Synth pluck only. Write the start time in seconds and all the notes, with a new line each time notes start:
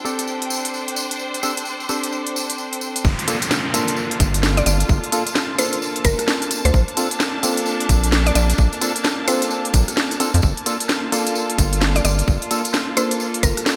4.57 D5
4.66 D5
5.59 C5
6.05 A#4
6.65 C5
8.27 D5
8.36 D5
9.28 C5
11.96 D5
12.05 D5
12.97 C5
13.43 A#4